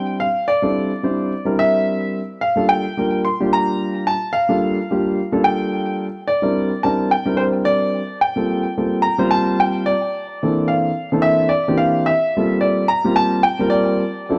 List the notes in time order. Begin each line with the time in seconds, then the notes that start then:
Already playing: G3 C4 D4 E4 C5 G5
0.20 F5
0.48 D5
0.62 G3 C4 D4 E4 A4
1.03 G3 C4 D4 E4 C5
1.45 G3 C4 D4 E4 A#4
1.59 E5
2.41 F5
2.56 G3 A#3 D4 F4 A4
2.69 G5
2.97 G3 A#3 D4 F4 A#4
3.25 C6
3.40 G3 A#3 D4 F4 G4
3.53 A#5
4.07 A5
4.33 F5
4.49 G3 A#3 D4 F4 A4
4.91 G3 A#3 D4 F4 G4
5.32 G3 A#3 D4 F4 A4
5.44 G5
6.28 D5
6.42 G3 C4 D4 E4 A#4
6.83 G3 C4 D4 E4 A#4 A5
7.11 G5
7.25 G3 C4 D4 E4 A#4
7.37 C5
7.65 D5
8.21 G5
8.36 G3 A#3 C4 F4 A4
8.77 G3 A#3 C4 F4 A4
9.02 A#5
9.18 G3 A#3 C4 F4 C5
9.31 A5
9.60 G5
9.86 D5
10.43 E3 A#3 C4 D4 A4
10.68 F5
11.12 E3 A#3 C4 D4 A4
11.22 E5
11.49 D5
11.68 E3 A#3 C4 D4 G4
11.78 F5
12.06 E5
12.37 G3 A#3 C4 F4 A4
12.61 D5
12.88 A#5
13.04 G3 A#3 C4 F4 G4
13.16 A5
13.43 G5
13.59 G3 A#3 C4 F4 A#4
13.70 D5
14.29 F#3 C4 D4 E4 A4